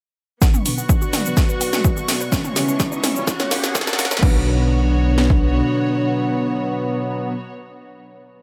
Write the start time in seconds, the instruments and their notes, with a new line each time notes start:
0.42 synth drone B2 B3, synth pluck B3, string section B3, soft synth lead D4, analog synth pad B4 D5 C#6, kick, snare, riser, shaker
0.51 string section C#6, mid tom, shaker
0.65 detuned saw bass B1, analog polysynth B2 F#3 B3, synth pluck D4, open hi-hat, shaker
0.75 detuned saw bass B1, synth pluck B3, string section F#4, shaker
0.89 soft synth lead D4, kick, shaker
1.02 synth pluck F#4, shaker
1.13 detuned saw bass F#1, synth pluck B3, snare, mid tom, open hi-hat, shaker
1.25 detuned saw bass B1, analog polysynth B2 F#3 B3, shaker
1.37 soft synth lead F#4, kick, snare, shaker
1.49 synth pluck B4, shaker
1.61 detuned saw bass B1, synth pluck B3, open hi-hat, shaker
1.73 detuned saw bass B1, synth pluck D4, snare, mid tom, shaker
1.85 synth pluck B3, kick, shaker
1.97 synth pluck F#4, shaker
2.08 detuned saw bass B1, synth pluck B3, snare, open hi-hat, shaker
2.21 detuned saw bass B1, synth pluck B4, shaker
2.32 soft synth lead C#4, synth pluck C#4, string section C#4, analog synth pad E4 E5, kick, snare, shaker
2.39 string section G#3
2.44 mid tom, shaker
2.56 detuned saw bass C#2, analog polysynth C#3 G3 C#4, synth pluck G4, snare, open hi-hat, shaker
2.68 detuned saw bass C#2, synth pluck C#4, shaker
2.80 kick, snare, shaker
2.92 synth pluck C#5, shaker
3.03 detuned saw bass G1, synth pluck C#4, snare, mid tom, open hi-hat, shaker
3.16 detuned saw bass C#2, analog polysynth C#3 G3 C#4, shaker
3.27 soft synth lead C#4, string section F#4, analog synth pad A#4 F#5, kick, snare, shaker
3.40 synth pluck C#5, snare, mid tom, shaker
3.51 detuned saw bass C#2, synth pluck A#3, snare, open hi-hat, shaker
3.63 detuned saw bass C#2, synth pluck F#4, snare, shaker
3.70 string section F#5
3.75 synth pluck A#3, kick, snare, shaker
3.81 snare
3.87 synth pluck A#4, snare, shaker
3.93 snare
3.99 detuned saw bass C#2, synth pluck A#3, snare, open hi-hat, shaker
4.05 snare
4.11 detuned saw bass C#2, synth pluck C#5, snare, shaker
4.17 snare
4.22 detuned saw bass B1, analog polysynth B2 F#3 B3, synth drone B2 B3, string section B3, analog synth pad B3 D4 C#5, synth pluck B3, soft synth lead D4, kick, crash
4.30 string section F#4
4.37 string section C#5
5.18 snare
5.30 kick